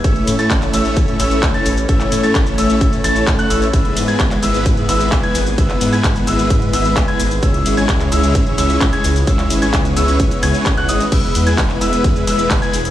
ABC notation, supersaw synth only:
X:1
M:4/4
L:1/16
Q:1/4=130
K:E
V:1 name="Supersaw synth"
[A,CEce]3 [A,CEca]3 [A,CEce]4 [A,CEce]3 [A,CEca] z2 | [A,CEce]3 [A,CEca]3 [A,CEce]4 [A,CEca]3 [A,CEcf] [A,CEce] z | [G,B,EBe]3 [G,B,EBg]3 [G,B,EBe]4 [G,B,EBe]3 [G,B,EBg] z2 | [G,B,EBe]3 [G,B,EBg]3 [G,B,EBe]4 [G,B,EBe]3 [G,B,EBg] z2 |
[G,CEce]3 [G,CEcg]3 [G,CEce]4 [G,CEce]3 [G,CEcg] z2 | [G,CEce]3 [G,CEcg]3 [G,CEce]4 [G,CEcg]3 [G,CEcf] [G,CEcd] z | [G,B,EBe]3 [G,B,EBg]3 [G,B,EBe]4 [G,B,EBe]3 [G,B,EBg] z2 |]